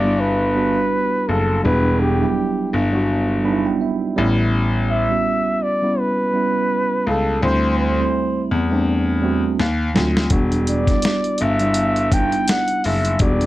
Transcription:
0.00 0.73 G1 medium
0.00 0.04 G3 loud
0.00 0.50 G3 medium
0.00 0.05 B3 loud
0.00 0.05 D4 medium
0.00 0.57 F#4 loud
0.00 4.18 G4 medium
0.00 0.22 D5 medium
0.05 0.50 B3 medium
0.05 0.51 D4 medium
0.05 0.51 E4 medium
0.20 1.30 B4 medium
0.55 1.53 G3 medium
0.55 1.53 B3 medium
0.55 1.54 D4 medium
0.55 1.54 F#4 medium
1.28 1.56 F#1 medium
1.28 1.64 A4 medium
1.63 2.21 E1 medium
1.63 2.13 G3 medium
1.63 2.14 B3 medium
1.63 2.14 D4 medium
1.63 2.15 E4 loud
1.63 2.02 B4 medium
2.00 2.72 G4 medium
2.20 2.26 F#3 soft
2.20 2.83 B3 medium
2.20 2.84 D4 medium
2.20 2.84 E4 medium
2.27 2.86 G3 medium
2.73 3.62 G1 medium
2.93 3.39 G3 medium
2.93 3.39 B3 medium
2.93 3.40 D4 medium
2.93 3.40 F#4 medium
3.44 4.09 G3 medium
3.44 4.10 B3 medium
3.44 4.10 D4 medium
3.44 3.53 D#4 medium
3.44 3.64 B5 medium
3.53 4.14 E4 medium
3.66 3.80 G5 medium
3.81 4.49 E5 medium
4.16 5.03 A1 medium
4.16 4.98 G3 medium
4.16 4.98 B3 medium
4.16 4.98 C#4 medium
4.16 4.99 E4 loud
4.90 5.64 E5 loud
5.09 5.72 G3 medium
5.09 5.73 B3 medium
5.09 5.73 C#4 medium
5.09 5.73 F#4 medium
5.63 6.01 D5 medium
5.82 6.28 G3 medium
5.82 6.28 B3 medium
5.82 6.29 C#4 medium
5.82 6.29 E4 medium
5.99 7.10 B4 medium
6.33 7.31 G3 medium
6.33 7.32 B3 medium
6.33 7.32 C#4 medium
6.33 7.32 E4 medium
7.07 7.35 C#2 medium
7.07 7.43 A4 medium
7.42 7.99 D2 medium
7.42 7.92 G3 medium
7.42 7.92 A3 medium
7.42 7.92 C4 medium
7.42 7.93 E4 medium
7.42 7.76 C5 medium
7.79 8.47 C5 medium
7.99 8.62 G3 medium
7.99 8.62 A3 medium
7.99 8.62 C4 medium
7.99 8.63 E4 medium
8.51 9.40 E2 medium
8.71 9.17 G3 medium
8.71 9.17 A3 medium
8.71 9.18 C4 medium
8.71 9.18 D4 medium
9.22 9.58 G3 medium
9.22 9.59 A3 medium
9.22 9.59 C4 medium
9.22 9.59 F#4 medium
9.60 9.88 D#2 medium
9.60 snare medium
9.94 10.24 D2 medium
9.94 10.27 F#3 medium
9.94 10.28 A3 medium
9.94 10.28 C4 medium
9.94 10.28 F4 medium
9.94 snare medium
10.17 snare medium
10.30 10.88 E1 medium
10.30 10.81 G3 medium
10.30 10.81 B3 medium
10.30 10.81 D4 medium
10.30 10.82 F#4 loud
10.30 kick medium
10.30 closed hi-hat medium
10.52 closed hi-hat soft
10.67 11.43 D5 medium
10.67 closed hi-hat medium
10.87 11.51 G3 medium
10.87 11.51 B3 medium
10.87 11.51 D4 medium
10.87 11.52 E4 medium
10.87 kick medium
10.87 snare soft
10.87 closed hi-hat soft
11.02 snare loud
11.02 closed hi-hat medium
11.24 closed hi-hat soft
11.38 12.29 G1 medium
11.38 12.15 E5 medium
11.38 closed hi-hat medium
11.59 12.06 G3 medium
11.59 12.07 B3 medium
11.59 12.07 D4 medium
11.59 12.07 E4 medium
11.59 closed hi-hat soft
11.74 closed hi-hat medium
11.96 closed hi-hat soft
12.11 13.09 G3 medium
12.11 13.10 B3 medium
12.11 13.10 D4 medium
12.11 12.20 D#4 medium
12.11 12.51 G5 loud
12.11 kick medium
12.11 closed hi-hat medium
12.20 13.14 E4 medium
12.32 closed hi-hat soft
12.48 12.87 F#5 loud
12.48 snare loud
12.48 closed hi-hat medium
12.68 closed hi-hat soft
12.84 13.13 F#1 medium
12.84 13.24 E5 medium
12.84 open hi-hat soft
13.05 closed hi-hat soft
13.19 13.46 E1 medium
13.19 13.46 G3 medium
13.19 13.46 B3 medium
13.19 13.46 D4 medium
13.19 13.46 F#4 loud
13.19 13.46 D5 medium
13.19 kick loud
13.19 closed hi-hat medium
13.41 closed hi-hat soft

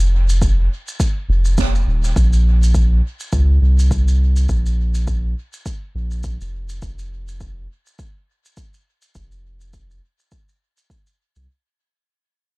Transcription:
0.00 0.68 F1 medium
0.29 shaker soft
0.42 kick medium
0.42 shaker medium
0.88 shaker soft
1.00 kick loud
1.00 shaker medium
1.29 1.85 F1 loud
1.45 shaker soft
1.58 kick loud
1.58 snare medium
1.58 shaker medium
1.75 shaker soft
1.87 2.13 D#1 medium
2.04 shaker soft
2.16 3.01 A#1 medium
2.16 kick loud
2.16 shaker medium
2.33 shaker soft
2.63 shaker medium
2.74 kick loud
2.74 shaker medium
3.20 shaker soft
3.32 3.59 C#2 medium
3.32 kick loud
3.32 shaker soft
3.62 4.47 C2 medium
3.79 shaker soft
3.91 kick loud
3.91 shaker medium
4.08 shaker soft
4.36 shaker medium
4.49 5.34 A#1 medium
4.49 kick medium
4.49 shaker medium
4.66 shaker soft
4.95 shaker soft
5.07 kick medium
5.07 shaker medium
5.53 shaker medium
5.66 kick medium
5.66 shaker medium
5.95 6.37 A#1 medium
6.11 shaker soft
6.23 kick medium
6.23 shaker medium
6.41 6.80 F1 medium
6.41 shaker soft
6.69 shaker soft
6.82 7.67 F1 medium
6.82 kick medium
6.82 shaker medium
6.99 shaker soft
7.28 shaker soft
7.40 kick medium
7.40 shaker medium
7.86 shaker soft
7.99 kick medium
7.99 shaker medium
8.45 shaker medium
8.57 kick medium
8.57 shaker medium
8.74 shaker soft
9.02 shaker soft
9.15 10.00 F1 loud
9.15 kick medium
9.15 shaker medium
9.32 shaker soft
9.61 shaker soft
9.73 kick medium
9.73 shaker medium
9.91 shaker soft
10.19 shaker soft
10.31 kick medium
10.31 shaker medium
10.49 shaker soft
10.77 shaker medium
10.90 kick medium
10.90 shaker medium
11.07 shaker soft
11.36 11.47 C2 medium
11.36 shaker soft

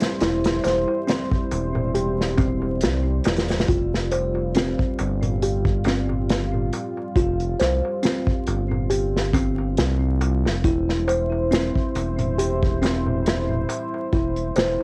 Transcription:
0.00 14.83 G3 medium
0.00 0.17 C4 loud
0.00 3.64 E4 medium
0.00 3.65 C5 medium
0.00 snare loud
0.00 closed hi-hat medium
0.00 darbuka tek medium
0.20 0.60 E1 loud
0.20 0.61 E4 medium
0.20 snare loud
0.20 closed hi-hat medium
0.20 darbuka tek soft
0.44 snare loud
0.44 closed hi-hat medium
0.64 0.85 E1 medium
0.64 1.04 C5 medium
0.64 snare medium
0.64 closed hi-hat medium
0.64 darbuka tek medium
0.88 darbuka tek medium
1.07 1.91 C4 medium
1.07 snare loud
1.07 closed hi-hat medium
1.07 darbuka tek soft
1.31 kick loud
1.51 2.84 E1 medium
1.51 closed hi-hat medium
1.51 darbuka tek medium
1.75 darbuka tek medium
1.75 darbuka dum medium
1.94 2.21 G4 medium
1.94 closed hi-hat medium
1.94 darbuka tek soft
2.21 snare soft
2.38 3.64 C4 loud
2.38 kick loud
2.38 closed hi-hat medium
2.38 darbuka tek medium
2.38 darbuka dum medium
2.62 darbuka tek medium
2.81 3.21 C2 loud
2.81 snare loud
2.81 closed hi-hat medium
2.81 darbuka tek soft
3.24 3.64 E1 medium
3.24 snare loud
3.24 closed hi-hat medium
3.24 darbuka tek loud
3.36 snare medium
3.36 closed hi-hat medium
3.48 snare medium
3.48 closed hi-hat medium
3.48 darbuka tek medium
3.59 snare medium
3.59 closed hi-hat medium
3.68 4.75 F1 medium
3.68 4.08 F4 medium
3.68 10.61 F4 medium
3.68 kick loud
3.68 closed hi-hat medium
3.68 darbuka tek soft
3.95 snare medium
4.12 4.51 C5 medium
4.12 closed hi-hat medium
4.12 darbuka tek medium
4.35 darbuka tek medium
4.55 5.39 C4 medium
4.55 snare loud
4.55 closed hi-hat medium
4.55 darbuka tek soft
4.79 kick medium
4.99 6.70 G1 loud
4.99 closed hi-hat medium
4.99 darbuka tek medium
5.22 closed hi-hat soft
5.22 darbuka tek medium
5.22 darbuka dum medium
5.42 5.69 G4 medium
5.42 closed hi-hat medium
5.42 darbuka tek soft
5.65 kick medium
5.84 7.12 C4 loud
5.84 snare medium
5.84 closed hi-hat medium
5.84 darbuka tek loud
6.09 darbuka tek medium
6.09 darbuka dum medium
6.29 snare loud
6.29 closed hi-hat medium
6.29 darbuka tek soft
6.54 darbuka dum medium
6.73 closed hi-hat medium
6.73 darbuka tek medium
6.97 darbuka tek soft
7.16 7.55 F1 medium
7.16 7.56 F4 medium
7.16 kick loud
7.16 closed hi-hat medium
7.16 darbuka tek soft
7.40 closed hi-hat soft
7.59 7.81 C2 medium
7.59 7.99 C5 medium
7.59 snare soft
7.59 closed hi-hat medium
7.59 darbuka tek medium
7.85 darbuka tek medium
8.03 8.86 C4 medium
8.03 snare loud
8.03 closed hi-hat medium
8.03 darbuka tek soft
8.27 kick loud
8.47 9.78 G1 loud
8.47 closed hi-hat medium
8.47 darbuka tek medium
8.71 darbuka tek medium
8.71 darbuka dum medium
8.90 9.17 G4 medium
8.90 closed hi-hat medium
8.90 darbuka tek soft
9.17 snare soft
9.33 10.60 C4 loud
9.33 kick medium
9.33 closed hi-hat medium
9.33 darbuka tek medium
9.58 darbuka tek medium
9.77 10.47 C2 loud
9.77 snare loud
9.77 closed hi-hat medium
9.77 darbuka tek soft
10.21 closed hi-hat medium
10.21 darbuka tek medium
10.45 10.62 F1 medium
10.45 snare medium
10.45 darbuka tek medium
10.64 11.71 E1 medium
10.64 11.04 E4 medium
10.64 14.83 E4 medium
10.64 14.83 C5 medium
10.64 kick loud
10.64 closed hi-hat medium
10.64 darbuka tek soft
10.89 snare soft
11.08 11.47 C5 medium
11.08 closed hi-hat medium
11.08 darbuka tek loud
11.32 darbuka tek medium
11.51 12.34 C4 medium
11.51 snare loud
11.51 closed hi-hat medium
11.51 darbuka tek soft
11.75 kick medium
11.95 13.65 E1 loud
11.95 closed hi-hat medium
11.95 darbuka tek medium
12.19 closed hi-hat soft
12.19 darbuka tek soft
12.19 darbuka dum medium
12.38 12.65 G4 medium
12.38 closed hi-hat medium
12.38 darbuka tek soft
12.63 kick medium
12.82 14.08 C4 loud
12.82 snare medium
12.82 closed hi-hat medium
12.82 darbuka tek medium
13.06 darbuka tek soft
13.06 darbuka dum medium
13.26 snare loud
13.26 closed hi-hat medium
13.26 darbuka tek soft
13.50 darbuka dum medium
13.69 closed hi-hat medium
13.69 darbuka tek medium
13.94 darbuka tek medium
14.13 14.51 E1 medium
14.13 14.52 E4 medium
14.13 kick medium
14.13 closed hi-hat medium
14.13 darbuka tek soft
14.36 closed hi-hat soft
14.56 14.77 E1 medium
14.56 14.83 C5 medium
14.56 snare loud
14.56 closed hi-hat medium
14.56 darbuka tek loud

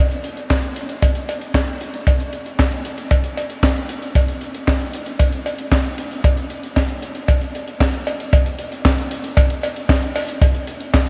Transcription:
0.11 closed hi-hat medium
0.24 closed hi-hat medium
0.37 closed hi-hat soft
0.50 kick loud
0.50 snare loud
0.50 clap medium
0.50 cowbell medium
0.63 closed hi-hat soft
0.76 closed hi-hat medium
0.89 closed hi-hat medium
1.02 kick loud
1.02 closed hi-hat medium
1.02 cowbell medium
1.15 closed hi-hat medium
1.29 closed hi-hat medium
1.29 cowbell medium
1.41 closed hi-hat soft
1.54 kick loud
1.54 snare loud
1.54 clap medium
1.54 cowbell medium
1.67 closed hi-hat soft
1.81 closed hi-hat medium
1.94 closed hi-hat medium
2.07 kick loud
2.07 closed hi-hat medium
2.07 cowbell medium
2.20 closed hi-hat medium
2.33 closed hi-hat medium
2.46 closed hi-hat medium
2.59 kick loud
2.59 snare loud
2.59 clap medium
2.59 cowbell medium
2.72 closed hi-hat soft
2.85 closed hi-hat medium
2.98 closed hi-hat medium
3.11 kick loud
3.11 closed hi-hat medium
3.11 cowbell medium
3.24 closed hi-hat medium
3.37 closed hi-hat medium
3.37 cowbell medium
3.50 closed hi-hat soft
3.63 kick loud
3.63 snare loud
3.63 clap medium
3.63 cowbell medium
3.76 closed hi-hat soft
3.89 closed hi-hat medium
4.02 closed hi-hat medium
4.15 kick loud
4.15 closed hi-hat medium
4.15 cowbell medium
4.28 closed hi-hat soft
4.41 closed hi-hat medium
4.54 closed hi-hat soft
4.68 kick loud
4.68 snare loud
4.68 clap medium
4.68 cowbell medium
4.80 closed hi-hat soft
4.93 closed hi-hat medium
5.06 closed hi-hat medium
5.19 kick loud
5.19 closed hi-hat medium
5.19 cowbell medium
5.33 closed hi-hat medium
5.46 closed hi-hat medium
5.46 cowbell medium
5.58 closed hi-hat soft
5.72 kick loud
5.72 snare loud
5.72 clap medium
5.72 cowbell medium
5.84 closed hi-hat soft
5.98 closed hi-hat medium
6.11 closed hi-hat medium
6.24 kick loud
6.24 closed hi-hat medium
6.24 cowbell medium
6.37 closed hi-hat medium
6.50 closed hi-hat medium
6.63 closed hi-hat soft
6.76 kick loud
6.76 snare loud
6.76 clap medium
6.76 cowbell medium
6.89 closed hi-hat soft
7.02 closed hi-hat medium
7.15 closed hi-hat medium
7.28 kick loud
7.28 closed hi-hat medium
7.28 cowbell medium
7.41 closed hi-hat medium
7.55 closed hi-hat medium
7.68 closed hi-hat soft
7.80 kick loud
7.80 snare loud
7.80 clap medium
7.80 cowbell medium
7.94 closed hi-hat soft
8.07 closed hi-hat medium
8.07 cowbell medium
8.20 closed hi-hat medium
8.33 kick loud
8.33 closed hi-hat medium
8.33 cowbell medium
8.46 closed hi-hat medium
8.59 closed hi-hat medium
8.72 closed hi-hat medium
8.85 kick loud
8.85 snare loud
8.85 clap medium
8.85 cowbell medium
8.98 closed hi-hat medium
9.11 closed hi-hat medium
9.24 closed hi-hat medium
9.37 kick loud
9.37 closed hi-hat loud
9.37 cowbell medium
9.50 closed hi-hat medium
9.63 closed hi-hat medium
9.63 cowbell medium
9.76 closed hi-hat medium
9.89 kick loud
9.89 snare loud
9.89 clap loud
9.89 cowbell medium
10.02 closed hi-hat medium
10.16 open hi-hat medium
10.16 cowbell medium
10.29 closed hi-hat medium
10.41 kick loud
10.41 closed hi-hat medium
10.41 cowbell medium
10.55 closed hi-hat medium
10.67 closed hi-hat medium
10.80 closed hi-hat medium
10.94 kick loud
10.94 snare loud
10.94 clap medium
10.94 cowbell medium

